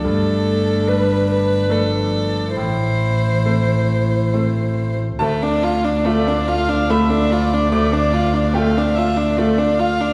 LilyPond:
<<
  \new Staff \with { instrumentName = "Viola" } { \time 3/4 \key d \dorian \tempo 4 = 72 d'2. | e'2~ e'8. r16 | r4 d''8 f''8 e''8 d''8~ | d''4 f''8 e''8 d''8 f''8 | }
  \new Staff \with { instrumentName = "Grand piano" } { \time 3/4 \key d \dorian << { r2. | r2. | a''2 b''4 | d'''4 g''2 | } \\ { g,4 <a d' b'>4 <a d' b'>4 | a,4 <a c' a'>4 <a c' a'>4 | d,4 <a f' a'>4 <a f' a'>4 | d,4 <a f' a'>4 <a f' a'>4 | } >> }
  \new Staff \with { instrumentName = "Violin" } { \time 3/4 \key d \dorian a'4 b'8 b'8 a'4 | c''2~ c''8. r16 | a16 d'16 f'16 d'16 a16 d'16 f'16 d'16 a16 d'16 f'16 d'16 | a16 d'16 f'16 d'16 a16 d'16 f'16 d'16 a16 d'16 f'16 d'16 | }
  \new Staff \with { instrumentName = "Cello" } { \clef bass \time 3/4 \key d \dorian a4 g4 f4 | e2~ e8. r16 | a2.~ | a2. | }
  \new Staff \with { instrumentName = "Double bass" } { \clef bass \time 3/4 \key d \dorian g,,2. | a,,2. | d,2.~ | d,2. | }
>>